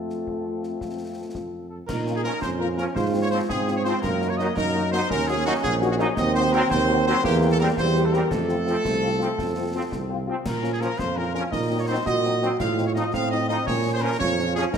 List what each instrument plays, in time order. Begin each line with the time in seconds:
Already playing: tuba F2, euphonium A3, french horn section A3 C4 F4, trumpet section A4
0.10 snare
0.27 tuba F2, concert bass drum
0.63 snare
0.81 tuba F2, concert bass drum, snare
1.34 tuba F2, concert bass drum, snare
1.70 trumpet section A4
1.87 tuba A#2, euphonium D#4, trumpet section A#4, concert bass drum, snare, crash
2.05 french horn section A#3 C#4 F4, snare
2.16 trumpet section G#4
2.24 trombone section F3 C#4, french horn section A#3 C#4 F4, trumpet section A#4, snare
2.41 tuba F2, euphonium C#4, trumpet section C5, concert bass drum, snare
2.59 french horn section A#3 C#4 F4, trumpet section A#4
2.77 trombone section F3 C#4, french horn section A#3 C#4 F4, trumpet section A#4, snare
2.95 tuba G#2, euphonium F4, trumpet section C5, concert bass drum, snare
3.12 french horn section F3 C4 F4
3.22 trumpet section C#5
3.31 french horn section F3 C4 F4, trombone section F3 C4, trumpet section C5
3.49 tuba G#2, euphonium C4, trumpet section G#4, concert bass drum, snare
3.68 french horn section F3 C4 F4, snare
3.76 trumpet section C#5
3.84 french horn section F3 C4 F4, trombone section F3 C4, trumpet section C5, snare
4.02 tuba F#2, euphonium A#3, trumpet section A#4, concert bass drum, snare, crash
4.21 french horn section A#3 D#4 F#4, snare
4.30 trumpet section C#5
4.38 trombone section F#3 D#4, french horn section A#3 D#4 F#4, trumpet section D#5, snare
4.56 tuba F#2, euphonium D#4, trumpet section A#4, concert bass drum, snare
4.74 french horn section A#3 D#4 F#4
4.92 trombone section F#3 D#4, french horn section A#3 D#4 F#4, trumpet section C5, snare
5.10 tuba D#2, euphonium C#4, trumpet section A#4, concert bass drum, snare
5.28 french horn section A#3 D#4 F#4, trumpet section G#4
5.45 trombone section F#3 D#4, french horn section A#3 D#4 F#4, trumpet section F#4
5.63 tuba A#1, trumpet section G#4, concert bass drum, snare
5.81 french horn section A#3 D#4 F#4, snare
5.91 trumpet section F#4
5.99 trombone section F#3 D#4, french horn section A#3 D#4 F#4, snare
6.17 tuba D#2, euphonium C4, trumpet section D#5, concert bass drum, snare, crash
6.35 french horn section F#3 C4 F#4, trumpet section C5, snare
6.53 french horn section F#3 C4 F#4, trombone section F#3 C4, trumpet section A#4, snare
6.70 tuba D#2, trumpet section C5, concert bass drum, snare
6.88 french horn section F#3 C4 F#4
7.06 french horn section F#3 C4 F#4, trombone section F#3 C4, trumpet section C5, snare
7.23 tuba E2, euphonium A#3, trumpet section G4, concert bass drum, snare
7.41 french horn section A#3 C4 G4
7.52 trumpet section A4
7.60 trombone section G3 C4, french horn section A#3 C4 G4, trumpet section A#4
7.77 tuba E2, euphonium G3, trumpet section C5, concert bass drum, snare
7.95 french horn section A#3 C4 G4, snare
8.05 trumpet section A4
8.13 trombone section G3 C4, french horn section A#3 C4 G4, trumpet section A#4, snare
8.31 tuba F2, euphonium A3, trumpet section A4, concert bass drum, snare, crash
8.48 french horn section F3 C4 F4, snare
8.66 french horn section F3 C4 F4, trombone section F3 C4, snare
8.84 tuba C2, concert bass drum, snare
9.02 french horn section F3 C4 F4
9.19 french horn section F3 C4 F4, trombone section F3 C4, snare
9.38 tuba F2, concert bass drum, snare
9.55 french horn section F3 C4 F4
9.74 french horn section F3 C4 F4, trombone section F3 C4
9.91 tuba C2, concert bass drum, snare
10.10 french horn section F3 C4 F4
10.27 trombone section F3 C4, french horn section F3 C4 F4
10.45 tuba A#2, trumpet section A#4, concert bass drum, snare, crash
10.63 french horn section F3 C#4 F4, snare
10.73 trumpet section G#4
10.81 french horn section F3 C#4 F4, trombone section F3 C#4, trumpet section A#4, snare
10.98 tuba F2, euphonium F4, trumpet section C5, concert bass drum, snare
11.16 french horn section F3 C#4 F4, trumpet section A#4
11.34 french horn section F3 C#4 F4, trombone section F3 C#4, trumpet section A#4, snare
11.51 tuba A#2, euphonium D#4, trumpet section D#5, concert bass drum, snare
11.71 french horn section F#3 C4 D#4
11.80 trumpet section C#5
11.88 trombone section F#3 C4, french horn section F#3 C4 D#4, trumpet section C5
12.06 tuba A#2, euphonium F#4, trumpet section D#5, concert bass drum, snare
12.24 french horn section F#3 C4 D#4, snare
12.41 trombone section F#3 C4, french horn section F#3 C4 D#4, snare
12.60 tuba A2, euphonium F4, trumpet section F5, concert bass drum, snare, crash
12.77 french horn section F3 C4 D#4, snare
12.87 trumpet section C#5
12.95 trombone section F3 D#4, french horn section F3 C4 D#4, trumpet section D#5, snare
13.13 tuba A2, euphonium C4, trumpet section F5, concert bass drum, snare
13.31 french horn section F3 C4 D#4, trumpet section D#5
13.48 french horn section F3 C4 D#4, trombone section F3 D#4, trumpet section D#5, snare
13.66 tuba A#2, euphonium C#4, trumpet section C#5, concert bass drum, snare
13.84 french horn section F3 C#4
13.94 trumpet section C5
14.02 french horn section F3 C#4, trombone section F3 C#4, trumpet section A#4
14.19 tuba F2, euphonium F4, trumpet section C#5, concert bass drum, snare
14.38 french horn section F3 C#4, snare
14.55 trombone section F3 C#4, french horn section F3 C#4, trumpet section G#4, snare
14.73 tuba F#2, euphonium D#4, trumpet section A#4, concert bass drum, snare, crash